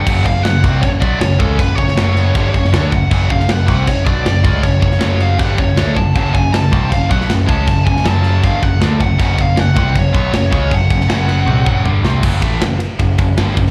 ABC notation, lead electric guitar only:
X:1
M:4/4
L:1/8
Q:1/4=158
K:F#m
V:1 name="Lead electric guitar"
f ^e f2 c d c A | B c6 f- | f ^e f2 c d3 | c c2 ^e f c2 a- |
a g a2 ^e f z a- | a g a2 ^e f z f- | f ^e f2 c2 c2 | f6 z2 |
z8 |]